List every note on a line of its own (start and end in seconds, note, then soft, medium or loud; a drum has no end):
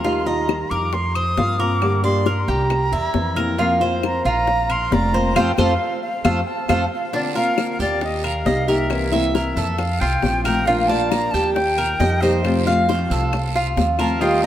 0.00 0.65 D#2 medium
0.00 0.25 D#3 medium
0.00 0.18 C6 medium
0.04 0.26 G3 medium
0.04 0.26 D#4 medium
0.04 0.26 F4 medium
0.04 0.25 F4 medium
0.04 high bongo medium
0.19 0.28 C6 medium
0.26 0.47 G3 medium
0.26 0.48 D#4 medium
0.26 0.48 F4 medium
0.26 0.70 D#5 medium
0.26 0.72 A#5 medium
0.48 0.92 D#3 soft
0.48 0.92 G3 soft
0.48 0.93 D#4 soft
0.48 0.93 F4 medium
0.48 high bongo medium
0.48 claves medium
0.70 1.33 F2 medium
0.70 1.14 A#4 medium
0.70 0.95 D6 loud
0.93 1.16 C6 medium
0.93 muted nylon-string guitar stroke medium
0.93 high bongo medium
1.15 1.37 C5 medium
1.15 1.61 D#6 loud
1.15 claves medium
1.37 2.42 G2 medium
1.37 1.58 F3 medium
1.37 1.59 A#3 soft
1.37 1.59 C4 soft
1.37 1.58 F4 medium
1.37 1.59 F5 medium
1.37 high bongo medium
1.37 low bongo medium
1.59 1.81 A#3 soft
1.59 1.81 C4 medium
1.59 1.81 F4 medium
1.59 2.03 A#4 medium
1.59 2.04 D6 loud
1.82 2.03 D3 medium
1.82 2.03 G3 medium
1.82 2.03 A#3 medium
1.82 2.03 D4 medium
1.82 2.02 G4 medium
1.82 high bongo medium
1.82 claves medium
2.03 2.24 G3 medium
2.03 2.25 A#3 medium
2.03 2.25 D4 medium
2.03 2.25 G4 medium
2.03 2.25 D5 medium
2.03 2.50 C6 medium
2.03 high bongo soft
2.25 2.69 G3 soft
2.25 2.69 A#3 soft
2.25 2.70 D4 soft
2.25 2.70 G4 soft
2.25 2.48 A#4 medium
2.25 high bongo medium
2.48 2.89 C2 medium
2.48 2.91 G4 medium
2.48 3.37 A#5 medium
2.48 high bongo soft
2.70 muted nylon-string guitar stroke medium
2.70 high bongo medium
2.70 claves medium
2.92 3.13 E2 medium
2.92 3.36 E4 medium
2.92 high bongo soft
3.14 4.19 F2 medium
3.14 3.36 E3 medium
3.14 3.36 A#3 soft
3.14 3.35 C4 medium
3.14 3.34 E4 soft
3.14 high bongo medium
3.14 low bongo medium
3.35 3.58 E3 soft
3.35 3.58 A#3 medium
3.35 3.58 C4 medium
3.35 3.57 E4 medium
3.35 3.58 A#4 medium
3.35 claves medium
3.58 3.80 F3 medium
3.58 3.80 A#3 medium
3.58 3.80 C4 medium
3.58 3.80 F4 medium
3.58 3.79 F4 medium
3.58 high bongo medium
3.80 4.02 A#3 medium
3.80 4.03 C4 medium
3.80 4.02 F4 medium
3.80 4.24 C5 medium
4.02 4.46 F3 soft
4.02 4.46 A#3 soft
4.02 4.46 C4 soft
4.02 4.46 F4 soft
4.02 4.25 A#5 medium
4.02 high bongo medium
4.02 claves medium
4.25 4.88 A#1 medium
4.25 4.68 F4 medium
4.25 4.73 A#5 loud
4.47 muted nylon-string guitar stroke medium
4.47 high bongo medium
4.70 4.91 A#4 medium
4.70 4.95 C6 loud
4.70 claves medium
4.91 5.33 F1 medium
4.91 5.13 D3 soft
4.91 5.13 A#3 soft
4.91 5.14 C4 medium
4.91 5.12 F4 medium
4.91 5.14 D5 medium
4.91 5.37 A#5 medium
4.91 high bongo medium
4.91 low bongo medium
5.13 5.36 A#3 medium
5.13 5.35 C4 medium
5.13 5.35 F4 medium
5.13 5.35 C5 medium
5.36 5.53 F2 medium
5.36 5.50 F3 medium
5.36 5.50 A3 loud
5.36 5.50 C4 medium
5.36 5.50 F4 medium
5.36 5.50 A4 medium
5.36 5.50 C5 medium
5.36 5.60 G5 medium
5.36 low bongo medium
5.36 claves medium
5.58 5.75 F2 medium
5.58 5.72 F3 loud
5.58 5.72 A3 medium
5.58 5.72 C4 medium
5.58 5.73 F4 medium
5.58 5.73 A4 medium
5.58 5.73 C5 medium
5.58 6.02 F5 medium
5.58 low bongo medium
5.58 claves medium
6.02 6.49 F5 medium
6.24 6.41 F2 medium
6.24 6.39 F3 medium
6.24 6.39 A3 loud
6.24 6.39 C4 loud
6.24 6.39 F4 medium
6.24 6.39 A4 medium
6.24 6.39 C5 medium
6.24 low bongo loud
6.24 claves medium
6.47 6.91 A5 medium
6.68 6.86 F2 medium
6.68 6.83 F3 medium
6.68 6.83 A3 medium
6.68 6.83 C4 medium
6.68 6.84 F4 medium
6.68 6.84 A4 medium
6.68 6.84 C5 medium
6.68 low bongo medium
6.68 claves medium
6.92 7.12 F5 medium
7.12 7.34 D3 medium
7.12 7.35 A#3 medium
7.12 7.35 C4 medium
7.12 7.35 D4 medium
7.12 7.34 F4 medium
7.12 7.21 D5 medium
7.12 high bongo medium
7.12 long guiro medium
7.35 7.56 A#3 medium
7.35 7.57 C4 medium
7.35 7.56 F4 medium
7.35 7.79 A#4 medium
7.35 7.78 F5 loud
7.57 8.01 D3 soft
7.57 8.01 A#3 soft
7.57 8.01 C4 soft
7.57 8.02 F4 soft
7.57 high bongo medium
7.57 short guiro medium
7.57 claves medium
7.79 8.42 D#2 medium
7.79 8.23 G4 medium
7.79 8.01 D5 medium
7.79 short guiro medium
8.01 8.26 D#5 medium
8.01 muted nylon-string guitar stroke medium
8.01 high bongo medium
8.01 long guiro medium
8.24 8.46 A#4 medium
8.24 8.70 F5 medium
8.24 claves medium
8.45 9.50 C2 medium
8.45 8.67 G3 soft
8.45 8.68 A#3 medium
8.45 8.67 D#4 medium
8.45 8.66 G4 medium
8.45 8.68 D#5 medium
8.45 high bongo medium
8.45 low bongo medium
8.45 short guiro medium
8.68 8.90 G3 soft
8.68 8.90 A#3 medium
8.68 8.90 D#4 medium
8.68 8.89 G4 medium
8.68 9.11 A#4 medium
8.68 9.13 E5 medium
8.68 short guiro medium
8.90 9.11 C3 medium
8.90 9.12 E3 medium
8.90 9.12 A#3 medium
8.90 9.12 C4 medium
8.90 9.10 E4 medium
8.90 high bongo medium
8.90 long guiro medium
8.90 claves medium
9.12 9.32 E3 medium
9.12 9.33 A#3 medium
9.12 9.34 C4 medium
9.12 9.33 E4 medium
9.12 9.34 E5 medium
9.12 high bongo soft
9.33 9.77 E3 soft
9.33 9.78 A#3 soft
9.33 9.78 C4 medium
9.33 9.79 E4 medium
9.33 9.56 A#4 medium
9.33 9.80 E5 medium
9.33 high bongo medium
9.33 short guiro medium
9.56 9.98 F2 medium
9.56 10.00 A4 medium
9.56 high bongo soft
9.56 short guiro medium
9.78 10.02 F5 medium
9.78 muted nylon-string guitar stroke medium
9.78 high bongo medium
9.78 long guiro medium
9.78 claves medium
10.00 10.22 C2 medium
10.00 10.44 F4 medium
10.00 10.44 G5 medium
10.00 high bongo soft
10.22 11.27 A#1 medium
10.22 10.44 F3 soft
10.22 10.45 A3 medium
10.22 10.44 C4 medium
10.22 10.43 F4 medium
10.22 high bongo medium
10.22 low bongo medium
10.22 short guiro medium
10.44 10.65 F3 medium
10.44 10.67 A3 medium
10.44 10.66 C4 medium
10.44 10.66 F4 medium
10.44 10.67 A#4 medium
10.44 10.67 G5 medium
10.44 short guiro medium
10.44 claves medium
10.66 10.88 F3 medium
10.66 10.89 A#3 medium
10.66 10.89 D4 medium
10.66 10.89 F4 medium
10.66 10.88 F4 medium
10.66 10.89 F5 medium
10.66 high bongo medium
10.66 long guiro medium
10.87 11.11 A#3 medium
10.87 11.11 D4 medium
10.87 11.11 F4 medium
10.87 11.32 D5 medium
10.87 11.11 A5 medium
11.10 11.55 F3 soft
11.10 11.55 A#3 soft
11.10 11.56 D4 soft
11.10 11.56 F4 soft
11.10 11.33 A#5 loud
11.10 high bongo medium
11.10 short guiro medium
11.10 claves medium
11.31 11.96 D#2 medium
11.31 11.77 G4 medium
11.31 11.53 A5 loud
11.31 short guiro medium
11.54 12.22 G5 medium
11.54 muted nylon-string guitar stroke medium
11.54 high bongo medium
11.54 long guiro medium
11.78 12.00 A#4 medium
11.78 claves medium
12.00 13.04 F2 medium
12.00 12.21 G3 medium
12.00 12.22 A#3 soft
12.00 12.22 D#4 medium
12.00 12.21 G4 medium
12.00 12.21 D#5 medium
12.00 high bongo medium
12.00 low bongo medium
12.00 short guiro medium
12.21 12.44 G3 soft
12.21 12.44 A#3 medium
12.21 12.44 D#4 medium
12.21 12.43 G4 medium
12.21 12.65 C5 medium
12.21 12.45 D#5 medium
12.21 short guiro medium
12.43 12.65 C3 medium
12.43 12.66 F3 medium
12.43 12.66 A3 medium
12.43 12.66 C4 medium
12.43 12.65 F4 medium
12.43 12.65 F5 medium
12.43 high bongo medium
12.43 long guiro medium
12.43 claves medium
12.66 12.87 F3 medium
12.66 12.88 A3 medium
12.66 12.88 C4 medium
12.66 12.88 F4 medium
12.66 13.51 F5 medium
12.66 12.88 F5 medium
12.66 high bongo soft
12.89 13.32 F3 soft
12.89 13.32 A3 soft
12.89 13.32 C4 soft
12.89 13.33 F4 medium
12.89 13.10 C5 medium
12.89 high bongo medium
12.89 short guiro medium
13.10 13.73 C2 medium
13.10 13.54 A4 medium
13.10 high bongo soft
13.10 short guiro medium
13.32 muted nylon-string guitar stroke medium
13.32 high bongo medium
13.32 long guiro medium
13.32 claves medium
13.55 13.98 F4 medium
13.55 high bongo soft
13.77 14.46 D#2 medium
13.77 13.98 F3 medium
13.77 13.99 A3 soft
13.77 13.99 C4 medium
13.77 13.97 F4 soft
13.77 high bongo medium
13.77 low bongo medium
13.77 short guiro medium
13.98 14.20 F3 medium
13.98 14.21 A3 medium
13.98 14.21 C4 medium
13.98 14.20 F4 medium
13.98 14.21 A#4 medium
13.98 14.22 F5 medium
13.98 14.23 A5 medium
13.98 short guiro medium
13.98 claves medium
14.20 14.42 D#3 medium
14.20 14.43 G3 medium
14.20 14.43 D#4 medium
14.20 14.43 F4 medium
14.20 14.42 F4 medium
14.20 14.43 D#5 medium
14.20 14.45 G5 medium
14.20 high bongo medium
14.20 long guiro medium
14.42 14.46 F4 medium
14.42 14.46 G5 medium